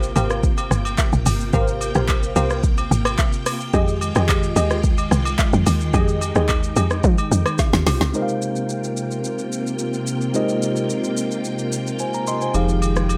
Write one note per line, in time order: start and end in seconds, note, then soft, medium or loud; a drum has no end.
0.00 0.13 A#1 medium
0.00 3.70 C3 medium
0.00 3.70 A#3 medium
0.00 3.70 F4 medium
0.00 0.13 G4 medium
0.00 0.13 A#4 medium
0.00 0.13 C5 medium
0.00 0.13 F5 medium
0.00 7.55 G5 medium
0.00 shaker medium
0.16 0.67 G#1 loud
0.16 0.41 G4 medium
0.16 0.41 A#4 medium
0.16 0.41 C5 medium
0.16 0.42 F5 medium
0.16 high agogo medium
0.16 shaker medium
0.30 cross-stick medium
0.30 shaker medium
0.43 kick loud
0.43 shaker medium
0.58 high agogo medium
0.58 shaker medium
0.71 0.96 G1 medium
0.71 cross-stick medium
0.71 shaker loud
0.85 high agogo medium
0.85 shaker medium
0.98 kick loud
0.98 clap loud
0.98 low woodblock medium
0.98 shaker medium
1.13 1.25 A#1 medium
1.13 shaker soft
1.26 1.51 G1 medium
1.26 open hi-hat medium
1.26 high agogo medium
1.26 shaker loud
1.40 shaker soft
1.53 1.92 G#1 loud
1.53 1.92 G4 loud
1.53 1.92 A#4 medium
1.53 1.92 C5 medium
1.53 1.92 F5 loud
1.53 kick loud
1.53 high agogo medium
1.53 shaker medium
1.68 shaker medium
1.81 high agogo medium
1.81 shaker medium
1.95 2.33 A#1 loud
1.95 2.33 G4 medium
1.95 2.33 A#4 medium
1.95 2.33 C5 medium
1.95 2.33 F5 medium
1.95 cross-stick loud
1.95 shaker medium
2.08 kick medium
2.08 clap loud
2.08 high agogo medium
2.08 shaker medium
2.23 shaker medium
2.36 2.87 C2 medium
2.36 2.61 G4 medium
2.36 2.61 A#4 medium
2.36 2.62 C5 medium
2.36 2.62 F5 medium
2.36 high agogo medium
2.36 shaker medium
2.50 cross-stick medium
2.50 shaker medium
2.63 kick loud
2.63 shaker medium
2.78 high agogo medium
2.78 shaker medium
2.91 3.17 G#1 loud
2.91 shaker loud
3.05 cross-stick loud
3.05 high agogo medium
3.05 shaker medium
3.18 kick loud
3.18 clap loud
3.18 low woodblock medium
3.18 shaker medium
3.33 shaker soft
3.46 cross-stick medium
3.46 open hi-hat medium
3.46 high agogo medium
3.46 shaker loud
3.61 shaker soft
3.73 4.12 F2 loud
3.73 7.55 D#3 medium
3.73 7.55 G#3 medium
3.73 5.92 F4 medium
3.73 4.12 G4 loud
3.73 4.12 G#4 medium
3.73 4.12 D#5 loud
3.73 kick loud
3.73 high agogo medium
3.73 shaker medium
3.88 shaker medium
4.01 high agogo medium
4.01 shaker medium
4.15 4.53 F2 medium
4.15 4.53 G4 medium
4.15 4.53 G#4 medium
4.15 4.53 D#5 medium
4.15 cross-stick loud
4.15 shaker medium
4.29 kick medium
4.29 clap loud
4.29 high agogo medium
4.29 shaker medium
4.43 shaker medium
4.56 5.07 D#2 medium
4.56 4.82 G4 medium
4.56 4.82 G#4 medium
4.56 4.82 D#5 medium
4.56 high agogo medium
4.56 shaker medium
4.70 cross-stick medium
4.70 shaker soft
4.84 kick loud
4.84 shaker medium
4.98 high agogo medium
4.98 shaker medium
5.11 5.37 C2 medium
5.11 cross-stick medium
5.11 shaker loud
5.25 high agogo medium
5.25 shaker medium
5.38 kick loud
5.38 clap loud
5.38 low woodblock medium
5.38 shaker medium
5.53 5.65 F2 loud
5.53 shaker soft
5.66 5.92 D#2 medium
5.66 open hi-hat medium
5.66 high agogo medium
5.66 shaker loud
5.81 shaker soft
5.93 6.32 F2 loud
5.93 7.57 D#4 medium
5.93 6.32 G4 loud
5.93 6.32 G#4 medium
5.93 6.32 D#5 loud
5.93 kick loud
5.93 high agogo medium
5.93 shaker medium
6.08 shaker soft
6.21 high agogo medium
6.21 shaker medium
6.35 6.73 D#2 medium
6.35 6.73 G4 medium
6.35 6.73 G#4 medium
6.35 6.73 D#5 medium
6.35 cross-stick loud
6.35 shaker medium
6.49 kick medium
6.49 clap loud
6.49 high agogo medium
6.49 shaker medium
6.63 shaker medium
6.76 7.02 F2 medium
6.76 7.02 G4 medium
6.76 7.02 G#4 medium
6.76 7.02 D#5 medium
6.76 high agogo medium
6.76 shaker medium
6.91 cross-stick medium
6.91 shaker soft
7.04 7.17 F3 loud
7.04 kick loud
7.04 shaker medium
7.18 high agogo medium
7.18 shaker medium
7.31 7.45 F2 medium
7.31 shaker loud
7.46 cross-stick loud
7.46 high agogo medium
7.46 shaker medium
7.59 8.14 C#3 medium
7.59 8.14 C4 medium
7.59 8.13 F4 medium
7.59 8.14 G4 medium
7.59 kick loud
7.59 snare medium
7.59 low woodblock medium
7.59 shaker medium
7.73 7.85 D#2 loud
7.73 snare medium
7.73 shaker soft
7.87 8.00 C2 medium
7.87 snare loud
7.87 open hi-hat medium
7.87 high agogo medium
7.87 shaker loud
8.01 8.13 C#2 medium
8.01 snare loud
8.01 shaker soft
8.14 12.51 C3 medium
8.14 10.30 G#3 medium
8.14 12.51 A#3 medium
8.14 10.30 D#4 medium
8.14 13.17 F4 medium
8.14 10.31 G4 medium
8.14 10.31 A#4 medium
8.14 10.31 C5 medium
8.14 8.22 D#5 medium
8.14 13.17 G5 medium
8.14 shaker medium
8.22 10.34 F5 medium
8.28 shaker soft
8.42 shaker medium
8.56 shaker medium
8.69 shaker medium
8.84 shaker medium
8.97 shaker medium
9.11 shaker soft
9.24 shaker medium
9.39 shaker medium
9.52 shaker medium
9.67 shaker medium
9.79 shaker medium
9.94 shaker soft
10.07 shaker loud
10.21 shaker soft
10.34 12.50 G#3 medium
10.34 12.50 D#4 medium
10.34 12.51 G4 medium
10.34 12.51 A#4 medium
10.34 11.97 C5 medium
10.34 11.97 D#5 medium
10.34 shaker medium
10.49 shaker soft
10.62 shaker medium
10.76 shaker medium
10.90 shaker medium
11.04 shaker medium
11.17 shaker medium
11.31 shaker soft
11.44 shaker medium
11.59 shaker medium
11.72 shaker medium
11.87 shaker medium
11.99 12.14 C5 soft
11.99 12.13 G#5 medium
11.99 shaker medium
12.14 12.27 A#5 medium
12.14 shaker soft
12.27 12.41 D#5 medium
12.27 12.41 C6 medium
12.27 shaker loud
12.41 12.68 C5 soft
12.41 12.68 G#5 medium
12.41 shaker soft
12.54 13.17 F1 medium
12.54 13.17 D#3 medium
12.54 13.17 F3 medium
12.54 13.17 G#3 medium
12.54 13.17 D#4 medium
12.54 13.17 G4 medium
12.54 13.17 G#4 medium
12.54 13.17 F5 medium
12.54 high agogo medium
12.54 shaker medium
12.69 shaker soft
12.82 high agogo medium
12.82 shaker medium
12.96 cross-stick medium
12.96 shaker medium
13.09 high agogo medium
13.09 shaker medium